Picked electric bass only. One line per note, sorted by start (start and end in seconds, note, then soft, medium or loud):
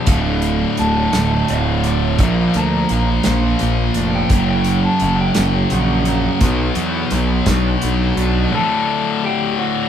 0.07 0.63 D1 medium
0.80 1.07 D1 medium
1.14 1.42 D1 medium
1.51 2.20 D1 medium
2.20 2.48 A#1 loud
2.55 2.83 D2 medium
2.91 3.18 A#1 medium
3.26 3.54 A#1 medium
3.61 3.89 A#1 medium
3.96 4.24 F1 medium
4.30 4.86 F#1 loud
5.02 5.30 F#1 medium
5.37 5.65 F#1 medium
5.72 6.27 A#1 medium
6.41 6.69 B1 loud
6.76 7.04 E2 medium
7.12 7.40 B1 medium
7.47 7.75 B1 medium
7.83 8.11 B1 medium
8.17 8.45 B1 medium